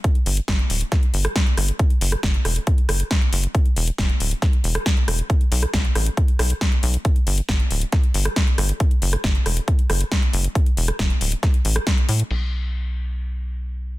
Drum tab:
CC |----------------|----------------|----------------|----------------|
HH |xxoxxxoxxxoxxxox|xxoxxxoxxxoxxxox|xxoxxxoxxxoxxxox|xxoxxxoxxxoxxxox|
SD |----o---o--ro-r-|---ro-r---r-o---|----o---o--ro-r-|---ro-r---r-o---|
BD |o---o---o---o---|o---o---o---o---|o---o---o---o---|o---o---o---o---|

CC |----------------|----------------|----------------|x---------------|
HH |xxoxxxoxxxoxxxox|xxoxxxoxxxoxxxox|xxoxxxoxxxoxxxox|----------------|
SD |----o---o--ro-r-|---ro-r---r-o---|---ro---o--ro---|----------------|
BD |o---o---o---o---|o---o---o---o---|o---o---o---o---|----------------|